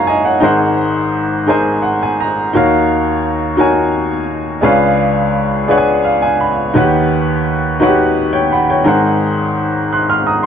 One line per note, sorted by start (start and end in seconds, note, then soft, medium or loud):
0.00 0.39 F#1 medium
0.00 0.39 F#2 medium
0.00 0.40 D#4 medium
0.00 0.44 F#4 medium
0.00 0.43 A#4 medium
0.00 0.26 C#5 medium
0.00 0.44 F5 loud
0.00 0.07 G#5 medium
0.00 0.44 A#5 medium
0.00 0.44 C#6 medium
0.07 0.25 D#5 medium
0.07 0.24 G#5 medium
0.25 0.59 C#5 medium
0.25 0.43 F#5 medium
0.40 2.49 G#1 medium
0.40 2.49 G#2 medium
0.40 1.24 D#4 medium
0.40 1.24 G#4 medium
0.40 1.25 A#4 medium
0.40 1.25 C5 medium
0.44 1.26 F#5 loud
1.47 2.30 D#4 medium
1.47 2.30 G#4 medium
1.47 2.31 A#4 medium
1.47 2.31 C5 medium
1.47 2.01 G#5 medium
1.82 1.99 F#5 medium
2.03 2.18 G#5 medium
2.20 2.52 A#5 medium
2.53 4.61 D#2 medium
2.53 4.61 D#3 medium
2.53 3.36 D#4 medium
2.53 3.37 F#4 medium
2.53 3.37 A#4 medium
2.53 3.37 C#5 medium
2.53 3.38 F5 loud
3.57 4.41 D#4 medium
3.57 4.41 F#4 medium
3.57 4.41 A#4 medium
3.57 4.42 C#5 medium
3.57 4.42 G#5 medium
4.61 6.71 C#2 medium
4.61 6.71 C#3 medium
4.61 5.45 D4 medium
4.61 5.46 G#4 medium
4.61 5.46 B4 medium
4.61 5.47 C#5 medium
4.61 5.47 F5 loud
5.68 6.52 D4 medium
5.68 6.52 G#4 medium
5.68 6.53 B4 medium
5.68 6.53 C#5 medium
5.68 5.77 F#5 medium
5.78 6.21 G#5 medium
6.05 6.21 F5 medium
6.22 6.39 G#5 medium
6.40 6.73 B5 medium
6.73 8.82 D#2 medium
6.73 8.83 D#3 medium
6.73 7.57 D#4 medium
6.73 6.81 F#4 medium
6.73 7.58 B4 medium
6.73 7.58 C#5 medium
6.73 7.59 F#5 loud
6.81 7.61 G4 medium
7.80 8.63 D#4 medium
7.80 7.87 F#4 medium
7.80 8.64 B4 medium
7.80 8.17 C#5 medium
7.80 8.17 F#5 loud
7.87 8.67 G4 medium
8.33 8.50 C#5 medium
8.33 8.50 G5 medium
8.52 8.69 F#5 medium
8.52 8.68 B5 medium
8.70 9.03 C#5 medium
8.70 9.03 G5 medium
8.84 10.46 G#1 medium
8.84 10.46 G#2 medium
8.84 9.68 D#4 medium
8.84 9.69 G#4 medium
8.84 9.69 A#4 medium
8.84 9.70 C5 medium
8.84 9.70 F#5 loud
9.93 10.08 C6 medium
9.93 10.09 F#6 medium
10.10 10.26 C6 medium
10.10 10.26 F6 medium
10.27 10.44 A#5 medium
10.27 10.44 D#6 medium